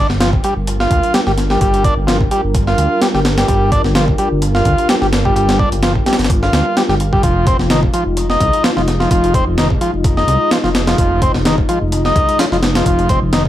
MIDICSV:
0, 0, Header, 1, 5, 480
1, 0, Start_track
1, 0, Tempo, 468750
1, 1651, Time_signature, 4, 2, 24, 8
1, 13809, End_track
2, 0, Start_track
2, 0, Title_t, "Analog synth pad"
2, 0, Program_c, 0, 89
2, 0, Note_on_c, 0, 55, 83
2, 0, Note_on_c, 0, 62, 74
2, 0, Note_on_c, 0, 65, 77
2, 0, Note_on_c, 0, 70, 89
2, 7367, Note_off_c, 0, 55, 0
2, 7369, Note_off_c, 0, 62, 0
2, 7370, Note_off_c, 0, 70, 0
2, 7410, Note_on_c, 0, 56, 80
2, 7411, Note_on_c, 0, 63, 73
2, 13809, Note_off_c, 0, 56, 0
2, 13809, Note_off_c, 0, 63, 0
2, 13809, Note_off_c, 0, 65, 0
2, 13809, End_track
3, 0, Start_track
3, 0, Title_t, "Transistor combo organ"
3, 0, Program_c, 1, 18
3, 210, Note_on_c, 1, 53, 101
3, 312, Note_off_c, 1, 53, 0
3, 454, Note_on_c, 1, 55, 69
3, 554, Note_off_c, 1, 55, 0
3, 821, Note_on_c, 1, 65, 76
3, 1160, Note_off_c, 1, 65, 0
3, 1169, Note_on_c, 1, 55, 86
3, 1231, Note_off_c, 1, 55, 0
3, 1297, Note_on_c, 1, 55, 98
3, 1350, Note_off_c, 1, 55, 0
3, 1543, Note_on_c, 1, 55, 76
3, 1637, Note_off_c, 1, 55, 0
3, 1649, Note_on_c, 1, 55, 84
3, 1879, Note_off_c, 1, 55, 0
3, 1886, Note_on_c, 1, 62, 102
3, 1990, Note_off_c, 1, 62, 0
3, 2123, Note_on_c, 1, 53, 100
3, 2228, Note_off_c, 1, 53, 0
3, 2368, Note_on_c, 1, 55, 77
3, 2471, Note_off_c, 1, 55, 0
3, 2739, Note_on_c, 1, 65, 74
3, 3079, Note_off_c, 1, 65, 0
3, 3091, Note_on_c, 1, 55, 84
3, 3151, Note_off_c, 1, 55, 0
3, 3221, Note_on_c, 1, 55, 103
3, 3272, Note_off_c, 1, 55, 0
3, 3460, Note_on_c, 1, 55, 77
3, 3553, Note_off_c, 1, 55, 0
3, 3565, Note_on_c, 1, 55, 81
3, 3797, Note_off_c, 1, 55, 0
3, 3807, Note_on_c, 1, 62, 103
3, 3910, Note_off_c, 1, 62, 0
3, 4044, Note_on_c, 1, 53, 101
3, 4149, Note_off_c, 1, 53, 0
3, 4287, Note_on_c, 1, 55, 73
3, 4390, Note_off_c, 1, 55, 0
3, 4656, Note_on_c, 1, 65, 78
3, 4997, Note_off_c, 1, 65, 0
3, 5009, Note_on_c, 1, 55, 87
3, 5071, Note_off_c, 1, 55, 0
3, 5135, Note_on_c, 1, 55, 102
3, 5189, Note_off_c, 1, 55, 0
3, 5379, Note_on_c, 1, 55, 78
3, 5473, Note_off_c, 1, 55, 0
3, 5486, Note_on_c, 1, 55, 84
3, 5717, Note_off_c, 1, 55, 0
3, 5727, Note_on_c, 1, 62, 99
3, 5830, Note_off_c, 1, 62, 0
3, 5971, Note_on_c, 1, 53, 100
3, 6072, Note_off_c, 1, 53, 0
3, 6210, Note_on_c, 1, 55, 73
3, 6312, Note_off_c, 1, 55, 0
3, 6583, Note_on_c, 1, 65, 75
3, 6921, Note_off_c, 1, 65, 0
3, 6930, Note_on_c, 1, 55, 86
3, 6991, Note_off_c, 1, 55, 0
3, 7060, Note_on_c, 1, 55, 99
3, 7112, Note_off_c, 1, 55, 0
3, 7296, Note_on_c, 1, 55, 78
3, 7397, Note_off_c, 1, 55, 0
3, 7408, Note_on_c, 1, 53, 84
3, 7638, Note_off_c, 1, 53, 0
3, 7651, Note_on_c, 1, 60, 98
3, 7752, Note_off_c, 1, 60, 0
3, 7889, Note_on_c, 1, 51, 99
3, 7991, Note_off_c, 1, 51, 0
3, 8126, Note_on_c, 1, 53, 70
3, 8230, Note_off_c, 1, 53, 0
3, 8496, Note_on_c, 1, 63, 79
3, 8837, Note_off_c, 1, 63, 0
3, 8843, Note_on_c, 1, 53, 82
3, 8908, Note_off_c, 1, 53, 0
3, 8977, Note_on_c, 1, 53, 98
3, 9030, Note_off_c, 1, 53, 0
3, 9217, Note_on_c, 1, 53, 74
3, 9317, Note_off_c, 1, 53, 0
3, 9329, Note_on_c, 1, 53, 88
3, 9559, Note_off_c, 1, 53, 0
3, 9573, Note_on_c, 1, 60, 97
3, 9673, Note_off_c, 1, 60, 0
3, 9809, Note_on_c, 1, 51, 102
3, 9911, Note_off_c, 1, 51, 0
3, 10047, Note_on_c, 1, 53, 75
3, 10150, Note_off_c, 1, 53, 0
3, 10416, Note_on_c, 1, 63, 74
3, 10757, Note_off_c, 1, 63, 0
3, 10770, Note_on_c, 1, 53, 82
3, 10831, Note_off_c, 1, 53, 0
3, 10894, Note_on_c, 1, 53, 99
3, 10949, Note_off_c, 1, 53, 0
3, 11137, Note_on_c, 1, 53, 76
3, 11235, Note_off_c, 1, 53, 0
3, 11247, Note_on_c, 1, 53, 85
3, 11478, Note_off_c, 1, 53, 0
3, 11491, Note_on_c, 1, 60, 99
3, 11592, Note_off_c, 1, 60, 0
3, 11734, Note_on_c, 1, 51, 106
3, 11833, Note_off_c, 1, 51, 0
3, 11970, Note_on_c, 1, 53, 77
3, 12072, Note_off_c, 1, 53, 0
3, 12344, Note_on_c, 1, 63, 77
3, 12681, Note_off_c, 1, 63, 0
3, 12692, Note_on_c, 1, 53, 81
3, 12752, Note_off_c, 1, 53, 0
3, 12822, Note_on_c, 1, 53, 98
3, 12873, Note_off_c, 1, 53, 0
3, 13063, Note_on_c, 1, 53, 75
3, 13158, Note_off_c, 1, 53, 0
3, 13170, Note_on_c, 1, 53, 88
3, 13399, Note_off_c, 1, 53, 0
3, 13409, Note_on_c, 1, 60, 104
3, 13511, Note_off_c, 1, 60, 0
3, 13651, Note_on_c, 1, 51, 101
3, 13752, Note_off_c, 1, 51, 0
3, 13809, End_track
4, 0, Start_track
4, 0, Title_t, "Detuned saw bass"
4, 0, Program_c, 2, 39
4, 96, Note_on_c, 2, 31, 101
4, 407, Note_off_c, 2, 31, 0
4, 579, Note_on_c, 2, 31, 77
4, 888, Note_off_c, 2, 31, 0
4, 927, Note_on_c, 2, 38, 89
4, 1028, Note_off_c, 2, 38, 0
4, 1298, Note_on_c, 2, 31, 85
4, 1608, Note_off_c, 2, 31, 0
4, 1646, Note_on_c, 2, 31, 102
4, 1970, Note_off_c, 2, 31, 0
4, 2019, Note_on_c, 2, 31, 101
4, 2328, Note_off_c, 2, 31, 0
4, 2498, Note_on_c, 2, 31, 77
4, 2808, Note_off_c, 2, 31, 0
4, 2845, Note_on_c, 2, 38, 91
4, 2947, Note_off_c, 2, 38, 0
4, 3216, Note_on_c, 2, 31, 82
4, 3527, Note_off_c, 2, 31, 0
4, 3566, Note_on_c, 2, 31, 97
4, 3889, Note_off_c, 2, 31, 0
4, 3937, Note_on_c, 2, 31, 105
4, 4247, Note_off_c, 2, 31, 0
4, 4419, Note_on_c, 2, 31, 81
4, 4729, Note_off_c, 2, 31, 0
4, 4766, Note_on_c, 2, 38, 94
4, 4868, Note_off_c, 2, 38, 0
4, 5136, Note_on_c, 2, 31, 84
4, 5447, Note_off_c, 2, 31, 0
4, 5488, Note_on_c, 2, 31, 102
4, 5810, Note_off_c, 2, 31, 0
4, 5856, Note_on_c, 2, 31, 101
4, 6167, Note_off_c, 2, 31, 0
4, 6335, Note_on_c, 2, 31, 78
4, 6647, Note_off_c, 2, 31, 0
4, 6682, Note_on_c, 2, 38, 91
4, 6786, Note_off_c, 2, 38, 0
4, 7053, Note_on_c, 2, 31, 84
4, 7365, Note_off_c, 2, 31, 0
4, 7405, Note_on_c, 2, 29, 100
4, 7729, Note_off_c, 2, 29, 0
4, 7771, Note_on_c, 2, 29, 102
4, 8084, Note_off_c, 2, 29, 0
4, 8254, Note_on_c, 2, 29, 79
4, 8566, Note_off_c, 2, 29, 0
4, 8604, Note_on_c, 2, 36, 88
4, 8707, Note_off_c, 2, 36, 0
4, 8976, Note_on_c, 2, 29, 83
4, 9287, Note_off_c, 2, 29, 0
4, 9327, Note_on_c, 2, 29, 103
4, 9650, Note_off_c, 2, 29, 0
4, 9696, Note_on_c, 2, 29, 98
4, 10007, Note_off_c, 2, 29, 0
4, 10175, Note_on_c, 2, 29, 76
4, 10486, Note_off_c, 2, 29, 0
4, 10521, Note_on_c, 2, 36, 91
4, 10626, Note_off_c, 2, 36, 0
4, 10892, Note_on_c, 2, 29, 87
4, 11205, Note_off_c, 2, 29, 0
4, 11246, Note_on_c, 2, 29, 96
4, 11570, Note_off_c, 2, 29, 0
4, 11621, Note_on_c, 2, 29, 102
4, 11929, Note_off_c, 2, 29, 0
4, 12100, Note_on_c, 2, 29, 79
4, 12409, Note_off_c, 2, 29, 0
4, 12448, Note_on_c, 2, 36, 95
4, 12549, Note_off_c, 2, 36, 0
4, 12819, Note_on_c, 2, 29, 90
4, 13128, Note_off_c, 2, 29, 0
4, 13168, Note_on_c, 2, 29, 100
4, 13491, Note_off_c, 2, 29, 0
4, 13539, Note_on_c, 2, 29, 102
4, 13809, Note_off_c, 2, 29, 0
4, 13809, End_track
5, 0, Start_track
5, 0, Title_t, "Drums"
5, 100, Note_on_c, 9, 38, 54
5, 203, Note_off_c, 9, 38, 0
5, 210, Note_on_c, 9, 38, 121
5, 210, Note_on_c, 9, 42, 91
5, 313, Note_off_c, 9, 38, 0
5, 313, Note_off_c, 9, 42, 0
5, 339, Note_on_c, 9, 36, 92
5, 442, Note_off_c, 9, 36, 0
5, 449, Note_on_c, 9, 42, 67
5, 551, Note_off_c, 9, 42, 0
5, 691, Note_on_c, 9, 42, 92
5, 793, Note_off_c, 9, 42, 0
5, 822, Note_on_c, 9, 38, 55
5, 924, Note_off_c, 9, 38, 0
5, 929, Note_on_c, 9, 36, 93
5, 929, Note_on_c, 9, 42, 65
5, 1031, Note_off_c, 9, 42, 0
5, 1032, Note_off_c, 9, 36, 0
5, 1059, Note_on_c, 9, 42, 45
5, 1161, Note_off_c, 9, 42, 0
5, 1168, Note_on_c, 9, 38, 115
5, 1168, Note_on_c, 9, 42, 86
5, 1270, Note_off_c, 9, 38, 0
5, 1270, Note_off_c, 9, 42, 0
5, 1297, Note_on_c, 9, 38, 47
5, 1400, Note_off_c, 9, 38, 0
5, 1408, Note_on_c, 9, 38, 50
5, 1408, Note_on_c, 9, 42, 66
5, 1511, Note_off_c, 9, 38, 0
5, 1511, Note_off_c, 9, 42, 0
5, 1537, Note_on_c, 9, 38, 56
5, 1640, Note_off_c, 9, 38, 0
5, 1649, Note_on_c, 9, 36, 104
5, 1649, Note_on_c, 9, 42, 84
5, 1751, Note_off_c, 9, 42, 0
5, 1752, Note_off_c, 9, 36, 0
5, 1779, Note_on_c, 9, 42, 46
5, 1881, Note_off_c, 9, 42, 0
5, 1889, Note_on_c, 9, 36, 97
5, 1889, Note_on_c, 9, 42, 68
5, 1991, Note_off_c, 9, 36, 0
5, 1992, Note_off_c, 9, 42, 0
5, 2131, Note_on_c, 9, 38, 116
5, 2131, Note_on_c, 9, 42, 88
5, 2234, Note_off_c, 9, 38, 0
5, 2234, Note_off_c, 9, 42, 0
5, 2260, Note_on_c, 9, 36, 97
5, 2362, Note_off_c, 9, 36, 0
5, 2368, Note_on_c, 9, 42, 68
5, 2471, Note_off_c, 9, 42, 0
5, 2607, Note_on_c, 9, 42, 90
5, 2608, Note_on_c, 9, 36, 113
5, 2709, Note_off_c, 9, 42, 0
5, 2711, Note_off_c, 9, 36, 0
5, 2738, Note_on_c, 9, 38, 46
5, 2840, Note_off_c, 9, 38, 0
5, 2848, Note_on_c, 9, 42, 68
5, 2950, Note_off_c, 9, 42, 0
5, 3088, Note_on_c, 9, 38, 117
5, 3088, Note_on_c, 9, 42, 86
5, 3190, Note_off_c, 9, 38, 0
5, 3190, Note_off_c, 9, 42, 0
5, 3220, Note_on_c, 9, 38, 51
5, 3323, Note_off_c, 9, 38, 0
5, 3327, Note_on_c, 9, 38, 108
5, 3327, Note_on_c, 9, 42, 80
5, 3429, Note_off_c, 9, 38, 0
5, 3429, Note_off_c, 9, 42, 0
5, 3457, Note_on_c, 9, 38, 98
5, 3457, Note_on_c, 9, 42, 74
5, 3559, Note_off_c, 9, 38, 0
5, 3559, Note_off_c, 9, 42, 0
5, 3567, Note_on_c, 9, 36, 105
5, 3568, Note_on_c, 9, 42, 81
5, 3670, Note_off_c, 9, 36, 0
5, 3670, Note_off_c, 9, 42, 0
5, 3808, Note_on_c, 9, 36, 102
5, 3808, Note_on_c, 9, 42, 68
5, 3910, Note_off_c, 9, 36, 0
5, 3911, Note_off_c, 9, 42, 0
5, 3937, Note_on_c, 9, 38, 58
5, 4039, Note_off_c, 9, 38, 0
5, 4046, Note_on_c, 9, 38, 116
5, 4046, Note_on_c, 9, 42, 91
5, 4149, Note_off_c, 9, 38, 0
5, 4149, Note_off_c, 9, 42, 0
5, 4178, Note_on_c, 9, 36, 99
5, 4280, Note_off_c, 9, 36, 0
5, 4284, Note_on_c, 9, 42, 67
5, 4387, Note_off_c, 9, 42, 0
5, 4526, Note_on_c, 9, 42, 93
5, 4628, Note_off_c, 9, 42, 0
5, 4657, Note_on_c, 9, 38, 59
5, 4759, Note_off_c, 9, 38, 0
5, 4764, Note_on_c, 9, 42, 68
5, 4767, Note_on_c, 9, 36, 98
5, 4867, Note_off_c, 9, 42, 0
5, 4870, Note_off_c, 9, 36, 0
5, 4898, Note_on_c, 9, 42, 44
5, 5001, Note_off_c, 9, 42, 0
5, 5007, Note_on_c, 9, 38, 119
5, 5007, Note_on_c, 9, 42, 87
5, 5109, Note_off_c, 9, 38, 0
5, 5109, Note_off_c, 9, 42, 0
5, 5139, Note_on_c, 9, 38, 49
5, 5242, Note_off_c, 9, 38, 0
5, 5249, Note_on_c, 9, 38, 108
5, 5249, Note_on_c, 9, 42, 83
5, 5351, Note_off_c, 9, 38, 0
5, 5351, Note_off_c, 9, 42, 0
5, 5379, Note_on_c, 9, 36, 85
5, 5481, Note_off_c, 9, 36, 0
5, 5491, Note_on_c, 9, 42, 60
5, 5593, Note_off_c, 9, 42, 0
5, 5620, Note_on_c, 9, 38, 100
5, 5620, Note_on_c, 9, 42, 80
5, 5722, Note_off_c, 9, 38, 0
5, 5722, Note_off_c, 9, 42, 0
5, 5729, Note_on_c, 9, 36, 88
5, 5832, Note_off_c, 9, 36, 0
5, 5859, Note_on_c, 9, 42, 60
5, 5961, Note_off_c, 9, 42, 0
5, 5966, Note_on_c, 9, 38, 102
5, 5966, Note_on_c, 9, 42, 79
5, 6069, Note_off_c, 9, 38, 0
5, 6069, Note_off_c, 9, 42, 0
5, 6099, Note_on_c, 9, 36, 84
5, 6201, Note_off_c, 9, 36, 0
5, 6209, Note_on_c, 9, 38, 84
5, 6209, Note_on_c, 9, 42, 66
5, 6275, Note_off_c, 9, 38, 0
5, 6275, Note_off_c, 9, 42, 0
5, 6275, Note_on_c, 9, 38, 88
5, 6275, Note_on_c, 9, 42, 64
5, 6341, Note_off_c, 9, 38, 0
5, 6341, Note_off_c, 9, 42, 0
5, 6341, Note_on_c, 9, 38, 84
5, 6341, Note_on_c, 9, 42, 65
5, 6394, Note_off_c, 9, 38, 0
5, 6394, Note_off_c, 9, 42, 0
5, 6394, Note_on_c, 9, 38, 86
5, 6394, Note_on_c, 9, 42, 64
5, 6449, Note_on_c, 9, 36, 111
5, 6450, Note_off_c, 9, 42, 0
5, 6450, Note_on_c, 9, 42, 92
5, 6497, Note_off_c, 9, 38, 0
5, 6551, Note_off_c, 9, 36, 0
5, 6552, Note_off_c, 9, 42, 0
5, 6581, Note_on_c, 9, 38, 47
5, 6684, Note_off_c, 9, 38, 0
5, 6689, Note_on_c, 9, 38, 102
5, 6689, Note_on_c, 9, 42, 75
5, 6791, Note_off_c, 9, 38, 0
5, 6791, Note_off_c, 9, 42, 0
5, 6930, Note_on_c, 9, 38, 100
5, 6930, Note_on_c, 9, 42, 79
5, 7032, Note_off_c, 9, 38, 0
5, 7032, Note_off_c, 9, 42, 0
5, 7059, Note_on_c, 9, 38, 51
5, 7162, Note_off_c, 9, 38, 0
5, 7168, Note_on_c, 9, 42, 68
5, 7270, Note_off_c, 9, 42, 0
5, 7298, Note_on_c, 9, 36, 93
5, 7400, Note_off_c, 9, 36, 0
5, 7406, Note_on_c, 9, 42, 85
5, 7407, Note_on_c, 9, 36, 104
5, 7508, Note_off_c, 9, 42, 0
5, 7510, Note_off_c, 9, 36, 0
5, 7646, Note_on_c, 9, 42, 68
5, 7647, Note_on_c, 9, 36, 99
5, 7748, Note_off_c, 9, 42, 0
5, 7749, Note_off_c, 9, 36, 0
5, 7777, Note_on_c, 9, 38, 56
5, 7880, Note_off_c, 9, 38, 0
5, 7885, Note_on_c, 9, 38, 118
5, 7885, Note_on_c, 9, 42, 86
5, 7988, Note_off_c, 9, 38, 0
5, 7988, Note_off_c, 9, 42, 0
5, 8017, Note_on_c, 9, 36, 98
5, 8119, Note_off_c, 9, 36, 0
5, 8127, Note_on_c, 9, 42, 70
5, 8229, Note_off_c, 9, 42, 0
5, 8365, Note_on_c, 9, 42, 88
5, 8467, Note_off_c, 9, 42, 0
5, 8496, Note_on_c, 9, 38, 57
5, 8598, Note_off_c, 9, 38, 0
5, 8607, Note_on_c, 9, 36, 93
5, 8607, Note_on_c, 9, 42, 70
5, 8709, Note_off_c, 9, 36, 0
5, 8709, Note_off_c, 9, 42, 0
5, 8738, Note_on_c, 9, 42, 44
5, 8841, Note_off_c, 9, 42, 0
5, 8848, Note_on_c, 9, 38, 119
5, 8848, Note_on_c, 9, 42, 92
5, 8950, Note_off_c, 9, 38, 0
5, 8950, Note_off_c, 9, 42, 0
5, 8979, Note_on_c, 9, 38, 51
5, 9082, Note_off_c, 9, 38, 0
5, 9090, Note_on_c, 9, 38, 49
5, 9090, Note_on_c, 9, 42, 67
5, 9192, Note_off_c, 9, 38, 0
5, 9192, Note_off_c, 9, 42, 0
5, 9220, Note_on_c, 9, 38, 55
5, 9322, Note_off_c, 9, 38, 0
5, 9327, Note_on_c, 9, 36, 104
5, 9327, Note_on_c, 9, 42, 84
5, 9429, Note_off_c, 9, 36, 0
5, 9429, Note_off_c, 9, 42, 0
5, 9460, Note_on_c, 9, 42, 46
5, 9562, Note_off_c, 9, 42, 0
5, 9567, Note_on_c, 9, 36, 96
5, 9568, Note_on_c, 9, 42, 71
5, 9669, Note_off_c, 9, 36, 0
5, 9670, Note_off_c, 9, 42, 0
5, 9808, Note_on_c, 9, 38, 119
5, 9808, Note_on_c, 9, 42, 92
5, 9910, Note_off_c, 9, 38, 0
5, 9910, Note_off_c, 9, 42, 0
5, 9937, Note_on_c, 9, 36, 96
5, 10040, Note_off_c, 9, 36, 0
5, 10047, Note_on_c, 9, 42, 72
5, 10150, Note_off_c, 9, 42, 0
5, 10284, Note_on_c, 9, 42, 92
5, 10286, Note_on_c, 9, 36, 121
5, 10387, Note_off_c, 9, 42, 0
5, 10388, Note_off_c, 9, 36, 0
5, 10417, Note_on_c, 9, 38, 48
5, 10520, Note_off_c, 9, 38, 0
5, 10526, Note_on_c, 9, 42, 69
5, 10629, Note_off_c, 9, 42, 0
5, 10765, Note_on_c, 9, 38, 112
5, 10765, Note_on_c, 9, 42, 87
5, 10867, Note_off_c, 9, 38, 0
5, 10867, Note_off_c, 9, 42, 0
5, 10896, Note_on_c, 9, 38, 53
5, 10999, Note_off_c, 9, 38, 0
5, 11005, Note_on_c, 9, 38, 106
5, 11005, Note_on_c, 9, 42, 81
5, 11108, Note_off_c, 9, 38, 0
5, 11108, Note_off_c, 9, 42, 0
5, 11135, Note_on_c, 9, 38, 97
5, 11135, Note_on_c, 9, 42, 76
5, 11237, Note_off_c, 9, 38, 0
5, 11237, Note_off_c, 9, 42, 0
5, 11247, Note_on_c, 9, 36, 109
5, 11247, Note_on_c, 9, 42, 87
5, 11349, Note_off_c, 9, 36, 0
5, 11349, Note_off_c, 9, 42, 0
5, 11488, Note_on_c, 9, 36, 97
5, 11488, Note_on_c, 9, 42, 70
5, 11590, Note_off_c, 9, 36, 0
5, 11591, Note_off_c, 9, 42, 0
5, 11617, Note_on_c, 9, 38, 57
5, 11719, Note_off_c, 9, 38, 0
5, 11729, Note_on_c, 9, 38, 122
5, 11729, Note_on_c, 9, 42, 88
5, 11831, Note_off_c, 9, 38, 0
5, 11831, Note_off_c, 9, 42, 0
5, 11858, Note_on_c, 9, 36, 99
5, 11961, Note_off_c, 9, 36, 0
5, 11969, Note_on_c, 9, 42, 68
5, 12072, Note_off_c, 9, 42, 0
5, 12208, Note_on_c, 9, 42, 92
5, 12311, Note_off_c, 9, 42, 0
5, 12339, Note_on_c, 9, 38, 57
5, 12442, Note_off_c, 9, 38, 0
5, 12448, Note_on_c, 9, 36, 96
5, 12449, Note_on_c, 9, 42, 70
5, 12551, Note_off_c, 9, 36, 0
5, 12551, Note_off_c, 9, 42, 0
5, 12581, Note_on_c, 9, 42, 47
5, 12684, Note_off_c, 9, 42, 0
5, 12688, Note_on_c, 9, 38, 115
5, 12688, Note_on_c, 9, 42, 87
5, 12791, Note_off_c, 9, 38, 0
5, 12791, Note_off_c, 9, 42, 0
5, 12821, Note_on_c, 9, 38, 49
5, 12924, Note_off_c, 9, 38, 0
5, 12929, Note_on_c, 9, 38, 110
5, 12929, Note_on_c, 9, 42, 82
5, 13031, Note_off_c, 9, 38, 0
5, 13031, Note_off_c, 9, 42, 0
5, 13059, Note_on_c, 9, 38, 103
5, 13059, Note_on_c, 9, 42, 79
5, 13162, Note_off_c, 9, 38, 0
5, 13162, Note_off_c, 9, 42, 0
5, 13168, Note_on_c, 9, 36, 106
5, 13168, Note_on_c, 9, 42, 85
5, 13270, Note_off_c, 9, 36, 0
5, 13271, Note_off_c, 9, 42, 0
5, 13299, Note_on_c, 9, 42, 45
5, 13402, Note_off_c, 9, 42, 0
5, 13408, Note_on_c, 9, 36, 97
5, 13408, Note_on_c, 9, 42, 66
5, 13510, Note_off_c, 9, 36, 0
5, 13510, Note_off_c, 9, 42, 0
5, 13648, Note_on_c, 9, 38, 120
5, 13648, Note_on_c, 9, 42, 87
5, 13750, Note_off_c, 9, 38, 0
5, 13750, Note_off_c, 9, 42, 0
5, 13777, Note_on_c, 9, 36, 96
5, 13809, Note_off_c, 9, 36, 0
5, 13809, End_track
0, 0, End_of_file